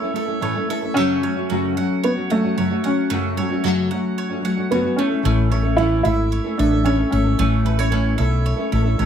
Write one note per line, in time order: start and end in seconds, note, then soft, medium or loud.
0.00 0.96 A3 medium
0.00 0.14 C#4 soft
0.00 1.01 E4 medium
0.00 0.14 E4 soft
0.00 0.15 A4 medium
0.00 0.42 C#5 soft
0.00 0.15 E5 medium
0.04 0.12 A3 soft
0.13 0.28 A3 medium
0.13 0.28 C#4 medium
0.13 0.27 E4 medium
0.13 0.26 A4 medium
0.13 0.69 E5 medium
0.27 0.40 A3 soft
0.27 0.41 C#4 soft
0.27 0.41 E4 soft
0.27 0.42 A4 medium
0.41 0.55 A2 medium
0.41 0.55 E3 medium
0.41 0.55 A3 medium
0.41 0.56 C#4 medium
0.41 0.55 E4 medium
0.41 0.54 A4 medium
0.41 1.23 C#5 medium
0.55 0.67 A3 soft
0.55 0.68 C#4 medium
0.55 0.69 E4 soft
0.55 0.69 A4 medium
0.68 0.82 A3 medium
0.68 0.83 C#4 medium
0.68 0.82 E4 medium
0.68 0.81 A4 medium
0.68 1.02 E5 medium
0.82 0.95 A3 soft
0.82 0.96 C#4 soft
0.82 0.96 E4 soft
0.82 0.96 A4 soft
0.94 1.22 F#2 medium
0.94 1.23 C#3 medium
0.94 1.21 F#3 medium
0.94 1.22 A3 medium
0.94 3.10 A3 medium
0.94 1.98 C#4 loud
0.94 1.23 C#4 medium
0.94 1.23 F#4 medium
1.23 1.36 F#3 medium
1.23 1.36 A3 soft
1.23 1.36 C#4 medium
1.23 1.35 F#4 medium
1.23 2.03 C#5 soft
1.36 1.49 F#3 soft
1.36 1.49 A3 soft
1.36 1.50 C#4 soft
1.36 1.49 F#4 soft
1.49 1.76 F#2 medium
1.49 1.77 C#3 medium
1.49 1.75 F#3 medium
1.49 1.76 A3 medium
1.49 1.77 C#4 medium
1.49 3.63 F#4 medium
1.49 1.77 F#4 medium
1.77 2.17 F#3 medium
1.77 2.16 A3 medium
1.77 2.16 C#4 medium
1.77 2.14 F#4 medium
1.77 2.29 F#5 medium
2.04 2.10 B3 medium
2.04 2.57 C#5 medium
2.15 2.29 F#3 soft
2.15 2.30 A3 soft
2.15 2.30 C#4 soft
2.15 2.29 F#4 soft
2.30 2.43 F#3 soft
2.30 2.44 A3 medium
2.30 2.80 A3 medium
2.30 2.43 C#4 medium
2.30 2.42 F#4 medium
2.30 2.83 F#5 medium
2.43 2.56 F#3 soft
2.43 2.57 A3 soft
2.43 2.57 C#4 soft
2.43 2.57 F#4 medium
2.57 2.70 F#2 medium
2.57 2.70 C#3 medium
2.57 2.70 F#3 medium
2.57 2.71 A3 medium
2.57 2.70 C#4 medium
2.57 2.69 F#4 medium
2.57 3.37 C#5 medium
2.70 2.82 F#3 soft
2.70 2.83 A3 soft
2.70 2.84 C#4 soft
2.70 2.84 F#4 soft
2.83 3.10 F#3 medium
2.83 3.10 A3 medium
2.83 3.10 C#4 medium
2.83 3.61 C#4 medium
2.83 3.11 F#4 medium
2.83 3.90 F#5 medium
3.10 3.37 F#2 medium
3.10 3.37 C#3 medium
3.10 3.36 F#3 medium
3.10 4.98 A3 medium
3.10 3.37 A3 medium
3.10 3.37 C#4 medium
3.10 3.38 F#4 medium
3.37 3.50 F#3 medium
3.37 3.50 A3 medium
3.37 3.49 C#4 medium
3.37 3.48 F#4 medium
3.37 4.18 C#5 medium
3.50 3.63 F#3 soft
3.50 3.63 A3 soft
3.50 3.64 C#4 soft
3.50 3.63 F#4 soft
3.63 3.90 F#2 medium
3.63 3.91 C#3 medium
3.63 3.88 F#3 medium
3.63 3.89 A3 medium
3.63 3.90 C#4 medium
3.63 5.03 F#4 medium
3.63 3.91 F#4 medium
3.89 4.30 F#3 medium
3.89 4.30 A3 medium
3.89 4.29 C#4 medium
3.89 4.28 F#4 medium
3.89 4.44 F#5 medium
4.18 4.71 C#5 medium
4.30 4.41 F#3 soft
4.30 4.41 A3 soft
4.30 4.42 C#4 soft
4.30 4.43 F#4 medium
4.42 4.56 F#3 medium
4.42 4.57 A3 medium
4.42 4.56 C#4 medium
4.42 4.55 F#4 medium
4.42 5.03 F#5 medium
4.57 4.70 F#3 soft
4.57 4.71 A3 soft
4.57 4.71 C#4 soft
4.57 4.70 F#4 soft
4.71 4.84 F#2 medium
4.71 4.84 C#3 medium
4.71 4.84 F#3 medium
4.71 4.85 A3 medium
4.71 4.96 B3 medium
4.71 4.83 C#4 medium
4.71 4.82 F#4 medium
4.71 5.51 C#5 medium
4.83 4.95 F#3 soft
4.83 4.95 A3 soft
4.83 4.96 C#4 soft
4.83 4.97 F#4 soft
4.96 5.10 A3 medium
4.96 5.25 A3 medium
4.96 5.80 C#4 medium
4.96 5.11 C#4 medium
4.96 5.10 E4 medium
4.96 5.08 A4 medium
5.09 5.22 A3 soft
5.09 5.22 C#4 soft
5.09 5.23 E4 soft
5.09 5.23 A4 soft
5.22 6.01 A1 medium
5.22 5.50 A2 medium
5.22 5.50 E3 medium
5.22 5.48 A3 medium
5.22 7.39 A3 medium
5.22 5.49 C#4 medium
5.22 5.50 E4 medium
5.22 5.50 A4 medium
5.50 5.64 A3 medium
5.50 5.63 C#4 medium
5.50 5.63 E4 medium
5.50 5.62 A4 medium
5.50 6.31 C#5 soft
5.63 5.77 A3 soft
5.63 5.77 C#4 soft
5.63 5.77 E4 soft
5.63 5.77 A4 soft
5.76 6.04 A2 medium
5.76 6.04 E3 medium
5.76 6.02 A3 medium
5.76 6.03 C#4 medium
5.76 6.02 E4 loud
5.76 7.91 E4 soft
5.76 6.04 E4 medium
5.76 6.05 A4 medium
6.03 6.38 G#1 medium
6.03 6.44 A3 soft
6.03 6.45 C#4 soft
6.03 6.59 E4 medium
6.03 6.44 E4 soft
6.03 6.43 A4 soft
6.03 6.59 E5 medium
6.32 6.84 C#5 soft
6.44 6.56 A3 soft
6.44 6.57 C#4 soft
6.44 6.58 E4 soft
6.44 6.58 A4 soft
6.57 7.03 A1 medium
6.57 6.71 A3 medium
6.57 6.72 C#4 medium
6.57 6.86 D4 medium
6.57 6.70 E4 medium
6.57 6.69 A4 medium
6.57 7.12 E5 medium
6.70 6.84 A3 soft
6.70 6.84 C#4 soft
6.70 6.84 E4 soft
6.70 6.84 A4 medium
6.84 6.98 A2 medium
6.84 6.98 E3 medium
6.84 6.98 A3 medium
6.84 7.09 C#4 medium
6.84 6.98 C#4 medium
6.84 6.97 E4 medium
6.84 6.96 A4 medium
6.84 7.65 C#5 medium
6.97 7.10 A3 soft
6.97 7.11 C#4 soft
6.97 7.12 E4 soft
6.97 7.11 A4 soft
7.11 7.34 G#1 medium
7.11 7.25 A3 medium
7.11 9.06 C#4 medium
7.11 7.25 C#4 medium
7.11 7.24 E4 medium
7.11 7.23 A4 medium
7.11 8.18 E5 medium
7.24 7.37 A3 soft
7.24 7.38 C#4 soft
7.24 7.39 E4 soft
7.24 7.38 A4 soft
7.38 8.15 A1 medium
7.38 7.65 A2 medium
7.38 7.65 E3 medium
7.38 7.64 A3 medium
7.38 9.06 A3 medium
7.38 7.65 C#4 medium
7.38 7.66 E4 medium
7.38 7.66 A4 medium
7.65 7.78 A3 medium
7.65 7.79 C#4 medium
7.65 7.79 E4 medium
7.65 7.77 A4 medium
7.65 7.79 B4 medium
7.78 7.91 A3 soft
7.78 7.90 C#4 soft
7.78 7.91 E4 soft
7.78 7.91 A4 medium
7.78 8.45 C#5 soft
7.91 8.18 A2 medium
7.91 8.18 E3 medium
7.91 8.15 A3 medium
7.91 8.17 C#4 medium
7.91 9.06 E4 medium
7.91 8.18 E4 medium
7.91 8.18 A4 medium
8.17 8.52 B1 medium
8.17 8.58 A3 medium
8.17 8.58 C#4 medium
8.17 8.56 E4 medium
8.17 8.55 A4 medium
8.17 8.72 E5 medium
8.46 8.98 C#5 soft
8.57 8.70 A3 soft
8.57 8.72 C#4 soft
8.57 8.71 E4 medium
8.57 8.71 A4 medium
8.71 8.94 A1 medium
8.71 8.85 A3 medium
8.71 8.85 C#4 medium
8.71 8.84 E4 medium
8.71 8.83 A4 medium
8.71 9.06 E5 medium
8.84 8.98 A3 soft
8.84 8.98 C#4 soft
8.84 8.98 E4 medium
8.84 8.98 A4 medium
8.98 9.06 A1 medium
8.98 9.06 A2 medium
8.98 9.06 E3 medium
8.98 9.06 A3 medium
8.98 9.06 C#4 medium
8.98 9.06 E4 medium
8.98 9.06 A4 medium
8.98 9.06 C#5 medium